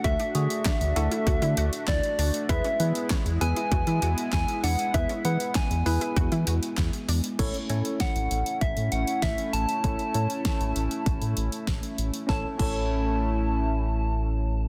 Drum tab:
CC |----------------|----------------|----------------|x---------------|
HH |xxxxxxxxxxxxxxox|xxxxxxxxxxxxxxox|xxxxxxoxxxxxxxox|xxxxxxxxxxxxxxxx|
CP |----x-------x---|----x-------x---|----x-------x---|----------------|
SD |----o-------o---|----o-------o---|----o-------o---|----o-------o---|
BD |o---o---o---o---|o---o---o---o---|o---o---o---o---|o---o---o---o---|

CC |----------------|--x-------------|
HH |xxxxxxxxxxxxxxxx|----------------|
CP |----------------|----------------|
SD |----o-------o---|o---------------|
BD |o---o---o---o---|o-o-------------|